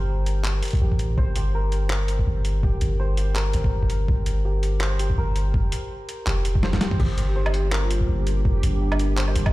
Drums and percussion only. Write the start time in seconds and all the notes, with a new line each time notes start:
0.26 closed hi-hat
0.44 clap
0.63 closed hi-hat
0.65 closed hi-hat
0.68 closed hi-hat
0.71 closed hi-hat
0.73 kick, closed hi-hat
0.75 closed hi-hat
0.77 closed hi-hat
0.79 closed hi-hat
0.92 kick
0.99 closed hi-hat
1.18 kick
1.36 closed hi-hat
1.72 closed hi-hat
1.90 clap
2.08 closed hi-hat
2.19 kick
2.45 closed hi-hat
2.63 kick
2.81 closed hi-hat
3.17 closed hi-hat
3.35 clap
3.53 closed hi-hat
3.64 kick
3.82 kick
3.90 closed hi-hat
4.08 kick
4.26 closed hi-hat
4.63 closed hi-hat
4.81 clap
4.99 closed hi-hat
5.10 kick
5.36 closed hi-hat
5.54 kick
5.72 closed hi-hat
6.09 closed hi-hat
6.27 clap
6.45 closed hi-hat
6.55 kick
6.63 snare
6.73 kick, snare, closed hi-hat
6.81 snare, closed hi-hat
6.91 mid tom
6.99 kick, crash
7.18 closed hi-hat
7.46 low woodblock
7.54 closed hi-hat
7.72 clap
7.91 closed hi-hat
8.01 kick
8.27 closed hi-hat
8.45 kick
8.63 closed hi-hat
8.92 low woodblock
8.99 closed hi-hat
9.17 clap
9.28 low woodblock
9.36 closed hi-hat
9.46 kick, low woodblock